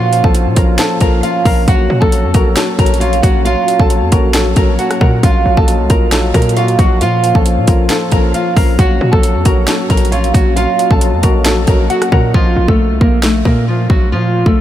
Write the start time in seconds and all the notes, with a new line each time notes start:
Already playing: A#2 F3 A#3 C#4 F4 C#5 F5, downlifter
0.12 F3, closed hi-hat
0.24 A#1 A4 A5, kick
0.34 F3, closed hi-hat
0.46 A#2
0.56 A#1 F4 A#4 A#5, kick, closed hi-hat
0.79 F3 A4 A5, snare, closed hi-hat
1.01 A#1 F3 A#4 A#5, kick, closed hi-hat
1.23 F4 F5, closed hi-hat
1.45 A#1 A#4 F5 A#5, kick, open hi-hat
1.68 A#1 F#3 C#4 F#4 C#5 F#5, kick, closed hi-hat
1.90 A#2 F#3
2.01 A#1 A4 A5, kick
2.12 F#3, closed hi-hat
2.24 F2
2.34 A#1 F#4 A#4 A#5, kick, closed hi-hat
2.56 F#3 A4 A5, snare, closed hi-hat
2.79 A#1 F#3 A#4 A#5, kick, closed hi-hat
2.86 closed hi-hat
2.94 closed hi-hat
3.00 F4 C#5 F5, closed hi-hat
3.13 closed hi-hat
3.22 A#1 F#4 F#5, kick, closed hi-hat
3.45 F#3 F4 F5, closed hi-hat
3.68 F#3, closed hi-hat
3.79 A#1 A4 A5, kick
3.90 F#3, closed hi-hat
4.02 F2
4.12 A#1 F#4 A#4 A#5, kick, closed hi-hat
4.34 F#3 A4 A5, snare, closed hi-hat
4.56 A#1 F#3 A#4 A#5, kick, closed hi-hat
4.79 F#4 F#5, closed hi-hat
4.91 cross-stick, closed hi-hat
5.01 A#2 A#4 F#5 A#5, kick
5.23 A#1 F#3 A#3 F4 D#5 F5, kick, closed hi-hat
5.46 A#1 F#3
5.57 A#1 A4 A5, kick
5.68 F#3, closed hi-hat
5.80 C2
5.90 A#1 F4 A#4 A#5, kick, closed hi-hat
6.12 F#3 A4 A5, snare, closed hi-hat
6.34 A#2 F#3 A#4 A#5, kick, closed hi-hat
6.42 closed hi-hat
6.49 closed hi-hat
6.57 F4 F#4 F5, closed hi-hat
6.68 closed hi-hat
6.79 A#1 F#4 F#5, kick, closed hi-hat
7.01 A#2 F3 C#4 F4 C#5 F5, closed hi-hat
7.23 F3, closed hi-hat
7.35 A#1 A4 A5, kick
7.45 F3, closed hi-hat
7.57 A#2
7.67 A#1 F4 A#4 A#5, kick, closed hi-hat
7.90 F3 A4 A5, snare, closed hi-hat
8.12 A#1 F3 A#4 A#5, kick, closed hi-hat
8.34 F4 F5, closed hi-hat
8.56 A#1 A#4 F5 A#5, kick, open hi-hat
8.79 A#1 F#3 F#4 F#5, kick, closed hi-hat
9.01 A#2 F#3
9.12 A#1 A4 A5, kick
9.23 F#3, closed hi-hat
9.35 F2
9.45 A#1 F#4 A#4 A#5, kick, closed hi-hat
9.67 F#3 A4 A5, snare, closed hi-hat
9.90 A#1 F#3 A#4 A#5, kick, closed hi-hat
9.97 closed hi-hat
10.05 closed hi-hat
10.12 F4 C#5 F5, closed hi-hat
10.24 closed hi-hat
10.34 A#1 F#4 F#5, kick, closed hi-hat
10.56 F#3 F4 D#5 F5, closed hi-hat
10.79 F#3, closed hi-hat
10.91 A#1 A4 A5, kick
11.01 F#3, closed hi-hat
11.13 F2
11.23 A#1 F#4 A#4 A#5, kick, closed hi-hat
11.45 F#3 A4 A5, snare, closed hi-hat
11.67 A#1 F#3 A#4 A#5, kick, closed hi-hat
11.90 F#4 F#5, closed hi-hat
12.02 cross-stick, closed hi-hat
12.12 A#2 A#4 F#5 A#5, kick
12.34 A#1 F3 F4, kick
12.56 A#1
12.68 A#1 A3 A4, kick
12.90 C2
13.01 A#1 A#3 A#4, kick
13.23 A3 A4, snare
13.45 A#2 A#3 A#4, kick
13.68 F3 F4
13.90 A#1 F#3 F#4, kick
14.12 A#2 F3 F4
14.46 A#1 A3 A4, kick